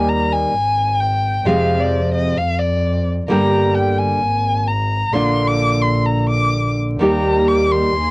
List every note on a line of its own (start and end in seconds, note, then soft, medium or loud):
0.00 0.49 D#2 medium
0.00 0.52 D#3 medium
0.00 0.53 G3 medium
0.00 0.53 A#3 medium
0.00 0.54 D#4 medium
0.00 0.54 G4 medium
0.00 0.10 G#5 medium
0.09 0.33 A#5 medium
0.32 1.02 G#5 medium
0.54 1.41 G#1 medium
1.00 1.48 G5 medium
1.45 2.33 F2 medium
1.45 2.36 C3 medium
1.45 2.37 F3 medium
1.45 2.37 G#3 medium
1.45 2.37 C4 medium
1.45 2.38 F4 medium
1.45 1.82 F5 medium
1.80 2.13 D5 medium
2.14 2.39 D#5 medium
2.37 3.24 F2 medium
2.37 2.60 F5 medium
2.59 3.05 D5 medium
3.28 4.16 G1 medium
3.28 4.19 D3 medium
3.28 4.20 G3 medium
3.28 4.71 A#3 medium
3.28 4.21 D4 medium
3.28 4.21 G4 medium
3.28 3.76 A#5 medium
3.74 3.99 G5 medium
3.97 4.69 G#5 medium
4.20 5.08 G#1 medium
4.67 5.14 A#5 medium
5.13 6.91 A#1 medium
5.13 6.99 D3 medium
5.13 7.00 A#3 medium
5.13 7.00 D4 medium
5.13 7.01 F4 medium
5.13 5.49 C6 medium
5.47 5.83 D6 loud
5.82 6.07 C6 medium
6.06 6.29 A#5 medium
6.29 6.73 D6 medium
6.99 7.90 D#2 medium
6.99 7.93 D#3 medium
6.99 7.93 G3 medium
6.99 7.90 A#3 medium
6.99 7.94 A#3 medium
6.99 7.90 D#4 medium
6.99 7.94 D#4 medium
6.99 7.90 G4 medium
6.99 7.94 G4 medium
6.99 7.50 A#5 medium
7.48 7.72 D6 medium
7.71 8.11 C6 loud
7.94 8.11 D#2 medium
7.94 8.11 A#3 medium
7.94 8.11 D#4 medium
7.94 8.11 G#4 medium